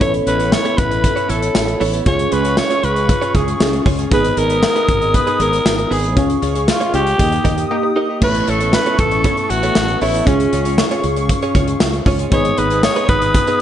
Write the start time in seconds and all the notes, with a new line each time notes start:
Already playing: C#5
0.00 A1 B3 C#4 E4 A4 C#5 E5 B5, kick, closed hi-hat
0.14 muted clean electric guitar stroke, closed hi-hat
0.26 A1 B3 E4 A4 B4 C#5, closed hi-hat
0.39 B3 E4 A4 C#5, closed hi-hat
0.52 C#5, snare, tambourine
0.65 B3 E4 A4 C#5, closed hi-hat
0.77 A1 B4, muted clean electric guitar stroke, kick, closed hi-hat
0.91 muted clean electric guitar stroke, closed hi-hat
1.03 muted clean electric guitar stroke, kick, closed hi-hat
1.16 B3 E4 A4 C#5, closed hi-hat
1.29 A1 B3 E4 A4 C#5, closed hi-hat
1.42 muted clean electric guitar stroke, closed hi-hat
1.55 A1, muted clean electric guitar stroke, snare, tambourine
1.67 muted clean electric guitar stroke, closed hi-hat
1.80 A1 B3 E4 A4 C#5, open hi-hat
1.93 B3 E4 A4 C#5, closed hi-hat
2.05 C#2 C#4 F4 G#4 C#5 F5 C#6, kick, closed hi-hat
2.19 muted clean electric guitar stroke, closed hi-hat
2.32 C#2 C#4 F4 G#4 B4 C#5, closed hi-hat
2.44 C#4 F4 G#4 C#5, closed hi-hat
2.57 C#5, snare, tambourine
2.70 C#4 F4 G#4 C#5, closed hi-hat
2.83 C#2 B4, muted clean electric guitar stroke, closed hi-hat
2.96 muted clean electric guitar stroke, closed hi-hat
3.09 muted clean electric guitar stroke, kick, closed hi-hat
3.22 C#4 F4 G#4 C#5, closed hi-hat
3.35 C#2 C#4 F4 G#4 C#5, kick, closed hi-hat
3.47 muted clean electric guitar stroke, closed hi-hat
3.60 C#2 C#4 F4 G#4, muted clean electric guitar stroke, snare, tambourine
3.73 muted clean electric guitar stroke, closed hi-hat
3.86 C#2 C#4 F4 G#4 C#5, kick, open hi-hat
3.99 C#4 F4 G#4 C#5, closed hi-hat
4.10 G#1 B3 D#4 G#4 B4 D#5 G#5 D#6, kick, closed hi-hat
4.24 muted clean electric guitar stroke, closed hi-hat
4.37 G#1 B3 D#4 G#4 A#4 B4, closed hi-hat
4.50 B3 D#4 G#4 B4, closed hi-hat
4.63 snare, tambourine
4.75 B3 D#4 G#4 B4, closed hi-hat
4.88 G#1, kick, closed hi-hat
5.01 muted clean electric guitar stroke, closed hi-hat
5.14 B4, muted clean electric guitar stroke, kick, closed hi-hat
5.27 B3 D#4 G#4 B4, closed hi-hat
5.39 G#1 B3 D#4 G#4 A#4 B4, closed hi-hat
5.53 muted clean electric guitar stroke, closed hi-hat
5.65 G#1, muted clean electric guitar stroke, snare, tambourine
5.78 muted clean electric guitar stroke, closed hi-hat
5.91 G#1 B3 D#4 G#4 B4, open hi-hat
6.04 B3 D#4 G#4 B4, closed hi-hat
6.16 C#2 C#4 F4 G#4 C#5 F5 C#6, kick, closed hi-hat
6.30 muted clean electric guitar stroke, closed hi-hat
6.42 C#2 C#4 F4 G#4 C#5, closed hi-hat
6.55 C#4 F4 G#4 C#5, closed hi-hat
6.68 F4, muted clean electric guitar stroke, snare, tambourine
6.80 C#4 F4 G#4 C#5, closed hi-hat
6.93 C#2 G#3 C#4 F4 G4, muted clean electric guitar stroke, closed hi-hat
7.06 muted clean electric guitar stroke, closed hi-hat
7.18 D#2 A#3 D#4 G4 A#4 D#5 G5 D#6, muted clean electric guitar stroke, kick, closed hi-hat
7.32 muted clean electric guitar stroke, closed hi-hat
7.44 D#2 D#4 G4 A#4 D#5, kick, closed hi-hat
7.57 muted clean electric guitar stroke, closed hi-hat
7.70 A#3 D#4 G4, muted clean electric guitar stroke
7.83 muted clean electric guitar stroke
7.96 D#4 G4 A#4 D#5
8.09 D#4 G4 A#4 D#5
8.21 A1 A3 B3 C#4 E4 A4 B4 C#5 E5 A5 C#6, kick, crash
8.35 muted clean electric guitar stroke, closed hi-hat
8.47 A1 B3 E4 A4 C#5, closed hi-hat
8.60 B3 E4 A4 C#5, closed hi-hat
8.73 B4, snare, tambourine
8.86 B3 E4 A4 C#5, closed hi-hat
8.98 A1 A4, kick, closed hi-hat
9.11 muted clean electric guitar stroke, closed hi-hat
9.24 B3 E4 A4 C#5, kick, closed hi-hat
9.37 muted clean electric guitar stroke, closed hi-hat
9.50 A1 F#4, muted clean electric guitar stroke, closed hi-hat
9.63 B3 E4 A4 C#5, closed hi-hat
9.75 A1, snare, tambourine
9.88 muted clean electric guitar stroke, closed hi-hat
10.01 A1 B3 E4 A4 C#5, open hi-hat
10.14 B3 E4 A4 C#5, closed hi-hat
10.25 C#2 C#4 F4 G#4 C#5 F5 C#6, kick, closed hi-hat
10.40 muted clean electric guitar stroke, closed hi-hat
10.52 C#2 C#4 F4 G#4 C#5, closed hi-hat
10.65 C#4 F4 G#4 C#5, closed hi-hat
10.78 snare, tambourine
10.91 C#4 F4 G#4 C#5, closed hi-hat
11.04 C#2, muted clean electric guitar stroke, closed hi-hat
11.16 muted clean electric guitar stroke, closed hi-hat
11.29 muted clean electric guitar stroke, kick, closed hi-hat
11.42 C#4 F4 G#4 C#5, closed hi-hat
11.55 C#2 C#4 F4 G#4 C#5, kick, closed hi-hat
11.68 muted clean electric guitar stroke, closed hi-hat
11.80 C#2, muted clean electric guitar stroke, snare, tambourine
11.93 muted clean electric guitar stroke, closed hi-hat
12.06 C#2 C#4 F4 G#4 C#5, kick, open hi-hat
12.19 C#4 F4 G#4 C#5, closed hi-hat
12.30 G#1 B3 D#4 G#4 B4 C#5 D#5 G#5 D#6, kick, closed hi-hat
12.45 closed hi-hat
12.58 G#1 B3 D#4 G#4 B4, closed hi-hat
12.70 B3 D#4 G#4 B4, closed hi-hat
12.83 C#5, snare, tambourine
12.96 B3 D#4 G#4 B4, closed hi-hat
13.09 G#1 B4, muted clean electric guitar stroke, kick, closed hi-hat
13.22 muted clean electric guitar stroke, closed hi-hat
13.35 muted clean electric guitar stroke, kick, closed hi-hat
13.47 B3 D#4 G#4 B4, closed hi-hat